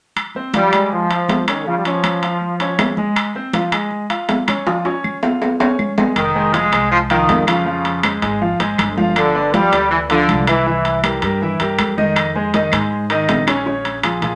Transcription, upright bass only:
6.16 6.69 F1 medium
6.72 7.25 C2 medium
7.28 8.16 F2 medium
8.22 8.57 G#1 medium
8.60 8.77 G#1 medium
8.78 9.66 G1 medium
9.73 10.25 D2 medium
10.28 11.16 C2 medium
11.22 11.57 G2 medium
11.60 11.77 G2 medium
11.78 12.66 F2 medium
12.72 13.25 G#2 medium
13.29 14.17 A#1 medium
14.22 14.35 A#2 medium

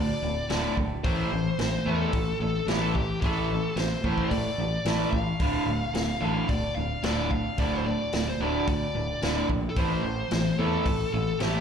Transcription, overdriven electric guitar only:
0.00 0.20 D2 medium
0.00 0.20 A2 medium
0.22 0.47 D2 medium
0.22 0.47 A2 medium
0.49 0.75 D2 medium
0.49 0.75 A2 medium
0.49 0.76 D3 loud
0.77 1.01 D2 medium
0.77 1.02 A2 medium
1.03 1.29 A2 medium
1.03 1.30 E3 medium
1.03 1.30 A3 medium
1.32 1.56 A2 medium
1.32 1.57 E3 medium
1.59 1.84 A2 medium
1.59 1.84 E3 medium
1.86 2.12 A2 medium
1.86 2.12 E3 medium
1.86 2.12 A3 medium
2.13 2.38 A2 medium
2.13 2.38 E3 medium
2.41 2.66 A2 medium
2.41 2.66 E3 medium
2.68 2.93 A2 medium
2.68 2.94 E3 medium
2.68 2.94 A3 medium
2.95 3.20 A2 medium
2.95 3.20 E3 medium
3.23 3.48 A2 medium
3.23 3.49 E3 medium
3.23 3.49 A3 loud
3.51 3.75 A2 medium
3.51 3.75 E3 medium
3.77 4.01 A2 medium
3.77 4.01 E3 medium
4.04 4.30 A2 medium
4.04 4.30 E3 medium
4.04 4.30 A3 loud
4.32 4.56 A2 medium
4.32 4.56 E3 medium
4.59 4.83 A2 medium
4.59 4.84 E3 medium
4.86 5.11 A2 medium
4.86 5.12 E3 medium
4.86 5.12 A3 medium
5.14 5.38 A2 medium
5.14 5.38 E3 medium
5.40 5.66 D2 medium
5.40 5.66 A2 medium
5.40 5.67 D3 medium
5.67 5.92 D2 medium
5.67 5.92 A2 medium
5.94 6.19 D2 medium
5.94 6.19 A2 medium
6.21 6.47 D2 medium
6.21 6.48 A2 medium
6.21 6.48 D3 loud
6.50 6.74 D2 medium
6.50 6.74 A2 medium
6.77 7.01 D2 medium
6.77 7.01 A2 medium
7.03 7.29 D2 medium
7.03 7.29 A2 medium
7.03 7.30 D3 medium
7.30 7.55 D2 medium
7.30 7.56 A2 medium
7.57 7.84 D2 medium
7.57 7.84 A2 medium
7.57 7.84 D3 medium
7.85 8.10 D2 medium
7.85 8.10 A2 medium
8.13 8.38 D2 medium
8.13 8.38 A2 medium
8.40 8.66 D2 medium
8.40 8.66 A2 medium
8.40 8.66 D3 medium
8.68 8.92 D2 medium
8.68 8.92 A2 medium
8.95 9.19 D2 medium
8.95 9.20 A2 medium
9.22 9.48 D2 medium
9.22 9.48 A2 medium
9.22 9.48 D3 medium
9.50 9.74 D2 medium
9.50 9.74 A2 medium
9.77 10.03 A2 medium
9.77 10.03 E3 medium
9.77 10.03 A3 medium
10.04 10.29 A2 medium
10.04 10.29 E3 medium
10.32 10.56 A2 medium
10.32 10.56 E3 medium
10.59 10.84 A2 medium
10.59 10.85 E3 medium
10.59 10.85 A3 medium
10.87 11.11 A2 medium
10.87 11.11 E3 medium
11.14 11.38 A2 medium
11.14 11.38 E3 medium
11.40 11.60 A2 medium
11.40 11.60 E3 medium
11.40 11.60 A3 medium

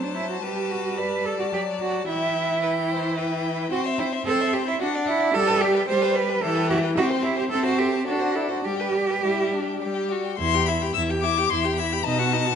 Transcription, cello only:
0.02 0.15 D4 medium
0.15 0.29 E4 medium
0.30 0.42 F#4 medium
0.43 0.72 G4 medium
0.70 0.99 F#4 medium
0.97 1.26 B4 medium
1.25 1.39 A4 medium
1.39 1.45 F#4 medium
1.53 1.61 G4 medium
1.80 2.07 F#4 medium
2.08 3.68 E4 medium
3.71 3.79 F#4 medium
3.98 4.06 E4 medium
4.25 4.54 A4 medium
4.53 4.66 G4 medium
4.67 4.79 E4 medium
4.80 4.88 F#4 medium
5.07 5.35 E4 medium
5.33 5.62 A4 loud
5.61 5.87 G4 medium
5.88 6.16 C5 loud
6.15 6.44 B4 medium
6.42 6.69 A4 medium
6.69 6.77 G4 medium
6.97 7.05 F#4 loud
7.23 7.37 E4 medium
7.37 7.43 G4 medium
7.50 7.64 A4 medium
7.65 7.80 F#4 medium
7.78 8.06 G4 medium
8.06 8.37 F#4 medium
8.35 8.49 E4 medium
8.51 8.66 F#4 medium
8.64 9.81 G4 medium
10.39 10.88 E2 medium
10.94 11.43 E2 medium
11.50 11.98 E2 medium
12.05 12.53 B2 medium

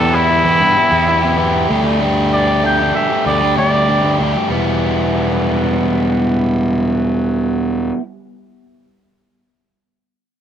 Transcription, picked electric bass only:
0.00 0.41 E2 medium
0.44 0.59 E2 medium
0.60 0.74 G2 medium
0.91 1.65 E2 medium
1.70 2.91 D2 medium
3.26 3.55 D2 medium
3.58 4.02 D2 medium
4.03 4.18 D2 medium
4.20 4.34 D2 medium
4.50 7.91 E1 medium

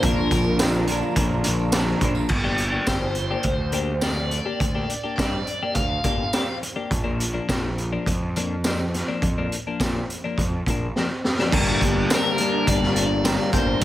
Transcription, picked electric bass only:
0.03 0.26 A#1 loud
0.31 1.01 A#1 loud
1.17 1.40 A#1 loud
1.47 1.93 A#1 loud
2.01 2.25 A#1 medium
2.30 2.77 G1 medium
2.88 3.34 G1 medium
3.45 4.38 D2 medium
4.60 4.83 D2 medium
5.18 5.41 G2 medium
5.75 5.99 D2 loud
6.05 6.28 G1 medium
6.91 7.38 A#1 medium
7.49 7.96 A#1 medium
8.07 9.01 F2 medium
9.22 9.46 F2 medium
9.80 10.03 A#2 medium
10.39 10.61 F2 loud
10.67 10.90 A#1 medium
11.53 11.76 G1 loud
11.82 12.05 G1 loud
12.68 13.37 G1 loud
13.54 13.77 G1 loud

